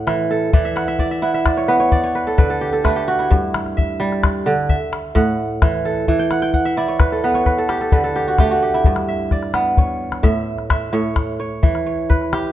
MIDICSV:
0, 0, Header, 1, 3, 480
1, 0, Start_track
1, 0, Tempo, 462606
1, 554, Time_signature, 12, 3, 24, 8
1, 12991, End_track
2, 0, Start_track
2, 0, Title_t, "Kora"
2, 0, Program_c, 0, 46
2, 0, Note_on_c, 0, 45, 79
2, 0, Note_on_c, 0, 76, 65
2, 0, Note_on_c, 0, 78, 65
2, 72, Note_on_c, 0, 52, 77
2, 188, Note_off_c, 0, 76, 0
2, 318, Note_on_c, 0, 69, 68
2, 542, Note_off_c, 0, 52, 0
2, 554, Note_on_c, 0, 52, 85
2, 555, Note_on_c, 0, 74, 64
2, 594, Note_off_c, 0, 78, 0
2, 606, Note_off_c, 0, 45, 0
2, 672, Note_on_c, 0, 76, 69
2, 787, Note_on_c, 0, 78, 65
2, 907, Note_off_c, 0, 76, 0
2, 911, Note_on_c, 0, 76, 74
2, 1027, Note_off_c, 0, 74, 0
2, 1031, Note_on_c, 0, 74, 72
2, 1149, Note_off_c, 0, 76, 0
2, 1153, Note_on_c, 0, 76, 67
2, 1267, Note_off_c, 0, 78, 0
2, 1267, Note_on_c, 0, 64, 82
2, 1271, Note_on_c, 0, 78, 69
2, 1389, Note_off_c, 0, 76, 0
2, 1393, Note_on_c, 0, 76, 73
2, 1507, Note_off_c, 0, 74, 0
2, 1511, Note_on_c, 0, 74, 72
2, 1631, Note_on_c, 0, 73, 70
2, 1685, Note_off_c, 0, 69, 0
2, 1745, Note_on_c, 0, 59, 83
2, 1745, Note_on_c, 0, 71, 70
2, 1862, Note_off_c, 0, 73, 0
2, 1866, Note_on_c, 0, 73, 79
2, 1928, Note_off_c, 0, 74, 0
2, 1992, Note_on_c, 0, 74, 75
2, 2043, Note_off_c, 0, 52, 0
2, 2108, Note_off_c, 0, 73, 0
2, 2112, Note_on_c, 0, 73, 76
2, 2228, Note_off_c, 0, 71, 0
2, 2232, Note_on_c, 0, 71, 72
2, 2272, Note_off_c, 0, 78, 0
2, 2355, Note_on_c, 0, 69, 71
2, 2466, Note_off_c, 0, 76, 0
2, 2467, Note_off_c, 0, 71, 0
2, 2469, Note_on_c, 0, 50, 80
2, 2471, Note_on_c, 0, 71, 68
2, 2532, Note_off_c, 0, 73, 0
2, 2589, Note_off_c, 0, 69, 0
2, 2593, Note_on_c, 0, 69, 77
2, 2709, Note_on_c, 0, 67, 72
2, 2826, Note_off_c, 0, 69, 0
2, 2830, Note_on_c, 0, 69, 71
2, 2893, Note_off_c, 0, 64, 0
2, 2946, Note_off_c, 0, 71, 0
2, 2949, Note_on_c, 0, 57, 83
2, 2950, Note_on_c, 0, 71, 72
2, 3068, Note_off_c, 0, 67, 0
2, 3072, Note_on_c, 0, 67, 66
2, 3141, Note_off_c, 0, 74, 0
2, 3194, Note_on_c, 0, 66, 74
2, 3309, Note_on_c, 0, 64, 68
2, 3430, Note_on_c, 0, 43, 80
2, 3480, Note_off_c, 0, 50, 0
2, 3492, Note_off_c, 0, 66, 0
2, 3678, Note_off_c, 0, 59, 0
2, 3911, Note_on_c, 0, 76, 68
2, 4147, Note_on_c, 0, 55, 83
2, 4197, Note_off_c, 0, 69, 0
2, 4226, Note_off_c, 0, 71, 0
2, 4537, Note_off_c, 0, 67, 0
2, 4628, Note_on_c, 0, 50, 83
2, 4678, Note_off_c, 0, 55, 0
2, 4866, Note_off_c, 0, 76, 0
2, 4871, Note_on_c, 0, 76, 64
2, 4917, Note_off_c, 0, 43, 0
2, 4917, Note_off_c, 0, 50, 0
2, 4935, Note_off_c, 0, 64, 0
2, 5022, Note_off_c, 0, 57, 0
2, 5344, Note_on_c, 0, 45, 86
2, 5346, Note_on_c, 0, 78, 70
2, 5833, Note_on_c, 0, 52, 77
2, 5943, Note_off_c, 0, 76, 0
2, 6073, Note_on_c, 0, 69, 65
2, 6298, Note_off_c, 0, 52, 0
2, 6310, Note_on_c, 0, 52, 83
2, 6347, Note_off_c, 0, 78, 0
2, 6355, Note_off_c, 0, 45, 0
2, 6425, Note_on_c, 0, 79, 69
2, 6549, Note_on_c, 0, 78, 69
2, 6658, Note_off_c, 0, 79, 0
2, 6662, Note_on_c, 0, 79, 68
2, 6779, Note_off_c, 0, 78, 0
2, 6784, Note_on_c, 0, 78, 76
2, 6904, Note_on_c, 0, 76, 67
2, 7028, Note_on_c, 0, 64, 77
2, 7029, Note_on_c, 0, 74, 67
2, 7142, Note_on_c, 0, 73, 70
2, 7264, Note_on_c, 0, 71, 72
2, 7386, Note_off_c, 0, 69, 0
2, 7390, Note_on_c, 0, 69, 70
2, 7508, Note_off_c, 0, 71, 0
2, 7510, Note_on_c, 0, 59, 74
2, 7513, Note_on_c, 0, 71, 67
2, 7621, Note_off_c, 0, 73, 0
2, 7625, Note_on_c, 0, 73, 72
2, 7629, Note_off_c, 0, 79, 0
2, 7688, Note_off_c, 0, 74, 0
2, 7737, Note_off_c, 0, 71, 0
2, 7741, Note_on_c, 0, 71, 66
2, 7784, Note_off_c, 0, 78, 0
2, 7794, Note_off_c, 0, 52, 0
2, 7864, Note_off_c, 0, 69, 0
2, 7868, Note_on_c, 0, 69, 74
2, 7976, Note_off_c, 0, 76, 0
2, 7984, Note_on_c, 0, 67, 76
2, 8098, Note_off_c, 0, 69, 0
2, 8102, Note_on_c, 0, 69, 71
2, 8218, Note_off_c, 0, 71, 0
2, 8220, Note_on_c, 0, 50, 79
2, 8222, Note_on_c, 0, 71, 71
2, 8282, Note_off_c, 0, 73, 0
2, 8338, Note_off_c, 0, 69, 0
2, 8342, Note_on_c, 0, 69, 72
2, 8460, Note_off_c, 0, 67, 0
2, 8464, Note_on_c, 0, 67, 76
2, 8590, Note_on_c, 0, 66, 69
2, 8653, Note_off_c, 0, 64, 0
2, 8707, Note_off_c, 0, 67, 0
2, 8710, Note_on_c, 0, 57, 78
2, 8711, Note_on_c, 0, 67, 70
2, 8825, Note_off_c, 0, 66, 0
2, 8830, Note_on_c, 0, 66, 67
2, 8944, Note_off_c, 0, 67, 0
2, 8948, Note_on_c, 0, 67, 66
2, 9070, Note_on_c, 0, 64, 65
2, 9191, Note_on_c, 0, 43, 79
2, 9234, Note_off_c, 0, 50, 0
2, 9253, Note_off_c, 0, 66, 0
2, 9426, Note_on_c, 0, 76, 66
2, 9444, Note_off_c, 0, 59, 0
2, 9498, Note_off_c, 0, 71, 0
2, 9670, Note_on_c, 0, 74, 71
2, 9709, Note_off_c, 0, 69, 0
2, 9901, Note_on_c, 0, 59, 79
2, 10149, Note_on_c, 0, 73, 64
2, 10413, Note_off_c, 0, 67, 0
2, 10499, Note_off_c, 0, 76, 0
2, 10616, Note_on_c, 0, 45, 80
2, 10617, Note_on_c, 0, 76, 69
2, 10675, Note_off_c, 0, 43, 0
2, 10696, Note_off_c, 0, 64, 0
2, 10783, Note_off_c, 0, 57, 0
2, 10819, Note_off_c, 0, 74, 0
2, 11096, Note_off_c, 0, 76, 0
2, 11100, Note_on_c, 0, 76, 66
2, 11326, Note_off_c, 0, 45, 0
2, 11335, Note_off_c, 0, 73, 0
2, 11338, Note_on_c, 0, 45, 82
2, 11340, Note_on_c, 0, 73, 75
2, 11821, Note_off_c, 0, 73, 0
2, 11825, Note_on_c, 0, 73, 62
2, 11835, Note_off_c, 0, 59, 0
2, 12065, Note_on_c, 0, 52, 79
2, 12119, Note_off_c, 0, 45, 0
2, 12173, Note_off_c, 0, 76, 0
2, 12306, Note_off_c, 0, 73, 0
2, 12310, Note_on_c, 0, 73, 63
2, 12551, Note_on_c, 0, 71, 69
2, 12792, Note_on_c, 0, 67, 83
2, 12991, Note_off_c, 0, 52, 0
2, 12991, Note_off_c, 0, 67, 0
2, 12991, Note_off_c, 0, 71, 0
2, 12991, Note_off_c, 0, 73, 0
2, 12991, End_track
3, 0, Start_track
3, 0, Title_t, "Calabash"
3, 78, Note_on_c, 9, 38, 59
3, 182, Note_off_c, 9, 38, 0
3, 555, Note_on_c, 9, 36, 69
3, 658, Note_off_c, 9, 36, 0
3, 796, Note_on_c, 9, 38, 69
3, 900, Note_off_c, 9, 38, 0
3, 913, Note_on_c, 9, 38, 23
3, 1016, Note_off_c, 9, 38, 0
3, 1026, Note_on_c, 9, 36, 64
3, 1130, Note_off_c, 9, 36, 0
3, 1393, Note_on_c, 9, 38, 20
3, 1497, Note_off_c, 9, 38, 0
3, 1511, Note_on_c, 9, 36, 64
3, 1511, Note_on_c, 9, 38, 70
3, 1614, Note_off_c, 9, 36, 0
3, 1614, Note_off_c, 9, 38, 0
3, 1752, Note_on_c, 9, 38, 20
3, 1856, Note_off_c, 9, 38, 0
3, 1990, Note_on_c, 9, 36, 74
3, 2094, Note_off_c, 9, 36, 0
3, 2473, Note_on_c, 9, 36, 76
3, 2473, Note_on_c, 9, 38, 25
3, 2577, Note_off_c, 9, 36, 0
3, 2577, Note_off_c, 9, 38, 0
3, 2955, Note_on_c, 9, 36, 69
3, 2955, Note_on_c, 9, 38, 64
3, 3059, Note_off_c, 9, 36, 0
3, 3059, Note_off_c, 9, 38, 0
3, 3438, Note_on_c, 9, 36, 70
3, 3541, Note_off_c, 9, 36, 0
3, 3677, Note_on_c, 9, 38, 66
3, 3781, Note_off_c, 9, 38, 0
3, 3801, Note_on_c, 9, 38, 23
3, 3904, Note_off_c, 9, 38, 0
3, 3925, Note_on_c, 9, 36, 71
3, 4029, Note_off_c, 9, 36, 0
3, 4278, Note_on_c, 9, 38, 21
3, 4382, Note_off_c, 9, 38, 0
3, 4394, Note_on_c, 9, 36, 73
3, 4394, Note_on_c, 9, 38, 78
3, 4498, Note_off_c, 9, 36, 0
3, 4498, Note_off_c, 9, 38, 0
3, 4869, Note_on_c, 9, 36, 75
3, 4973, Note_off_c, 9, 36, 0
3, 5113, Note_on_c, 9, 38, 62
3, 5217, Note_off_c, 9, 38, 0
3, 5351, Note_on_c, 9, 36, 71
3, 5351, Note_on_c, 9, 38, 25
3, 5455, Note_off_c, 9, 36, 0
3, 5455, Note_off_c, 9, 38, 0
3, 5831, Note_on_c, 9, 36, 66
3, 5831, Note_on_c, 9, 38, 65
3, 5935, Note_off_c, 9, 36, 0
3, 5935, Note_off_c, 9, 38, 0
3, 6308, Note_on_c, 9, 36, 62
3, 6412, Note_off_c, 9, 36, 0
3, 6543, Note_on_c, 9, 38, 63
3, 6647, Note_off_c, 9, 38, 0
3, 6665, Note_on_c, 9, 38, 21
3, 6769, Note_off_c, 9, 38, 0
3, 6781, Note_on_c, 9, 36, 63
3, 6885, Note_off_c, 9, 36, 0
3, 7022, Note_on_c, 9, 38, 20
3, 7126, Note_off_c, 9, 38, 0
3, 7259, Note_on_c, 9, 36, 72
3, 7259, Note_on_c, 9, 38, 68
3, 7362, Note_off_c, 9, 36, 0
3, 7362, Note_off_c, 9, 38, 0
3, 7377, Note_on_c, 9, 38, 22
3, 7481, Note_off_c, 9, 38, 0
3, 7618, Note_on_c, 9, 38, 22
3, 7722, Note_off_c, 9, 38, 0
3, 7741, Note_on_c, 9, 36, 69
3, 7741, Note_on_c, 9, 38, 22
3, 7845, Note_off_c, 9, 36, 0
3, 7845, Note_off_c, 9, 38, 0
3, 7858, Note_on_c, 9, 38, 19
3, 7961, Note_off_c, 9, 38, 0
3, 7979, Note_on_c, 9, 38, 63
3, 8082, Note_off_c, 9, 38, 0
3, 8098, Note_on_c, 9, 38, 18
3, 8202, Note_off_c, 9, 38, 0
3, 8219, Note_on_c, 9, 36, 65
3, 8322, Note_off_c, 9, 36, 0
3, 8340, Note_on_c, 9, 38, 19
3, 8444, Note_off_c, 9, 38, 0
3, 8465, Note_on_c, 9, 38, 19
3, 8569, Note_off_c, 9, 38, 0
3, 8700, Note_on_c, 9, 36, 63
3, 8700, Note_on_c, 9, 38, 57
3, 8803, Note_off_c, 9, 36, 0
3, 8803, Note_off_c, 9, 38, 0
3, 9176, Note_on_c, 9, 36, 69
3, 9280, Note_off_c, 9, 36, 0
3, 9298, Note_on_c, 9, 38, 53
3, 9401, Note_off_c, 9, 38, 0
3, 9661, Note_on_c, 9, 36, 66
3, 9661, Note_on_c, 9, 38, 19
3, 9765, Note_off_c, 9, 36, 0
3, 9765, Note_off_c, 9, 38, 0
3, 9780, Note_on_c, 9, 38, 22
3, 9884, Note_off_c, 9, 38, 0
3, 9897, Note_on_c, 9, 38, 63
3, 10001, Note_off_c, 9, 38, 0
3, 10142, Note_on_c, 9, 36, 64
3, 10246, Note_off_c, 9, 36, 0
3, 10501, Note_on_c, 9, 38, 52
3, 10605, Note_off_c, 9, 38, 0
3, 10622, Note_on_c, 9, 36, 70
3, 10622, Note_on_c, 9, 38, 20
3, 10726, Note_off_c, 9, 36, 0
3, 10726, Note_off_c, 9, 38, 0
3, 10982, Note_on_c, 9, 38, 22
3, 11086, Note_off_c, 9, 38, 0
3, 11104, Note_on_c, 9, 36, 71
3, 11104, Note_on_c, 9, 38, 75
3, 11208, Note_off_c, 9, 36, 0
3, 11208, Note_off_c, 9, 38, 0
3, 11580, Note_on_c, 9, 36, 62
3, 11580, Note_on_c, 9, 38, 70
3, 11684, Note_off_c, 9, 36, 0
3, 11684, Note_off_c, 9, 38, 0
3, 12069, Note_on_c, 9, 36, 70
3, 12173, Note_off_c, 9, 36, 0
3, 12191, Note_on_c, 9, 38, 49
3, 12295, Note_off_c, 9, 38, 0
3, 12557, Note_on_c, 9, 36, 62
3, 12557, Note_on_c, 9, 38, 20
3, 12661, Note_off_c, 9, 36, 0
3, 12661, Note_off_c, 9, 38, 0
3, 12674, Note_on_c, 9, 38, 22
3, 12778, Note_off_c, 9, 38, 0
3, 12792, Note_on_c, 9, 38, 65
3, 12896, Note_off_c, 9, 38, 0
3, 12991, End_track
0, 0, End_of_file